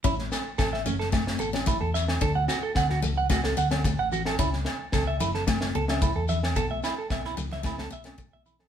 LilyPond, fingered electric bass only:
\new Staff \with { instrumentName = "Fingered electric bass" } { \clef bass \time 4/4 \key a \major \tempo 4 = 110 a,,8 r8 a,,8 fis,,4 a,,8. e,8. | d,8 r8 d,8 cis,4 d,8. a,,8. | cis,8 r8 cis,8 fis,,4 cis,8. e,8. | b,,8 r8 b,,8 cis,4 b,,8. b,,8. | }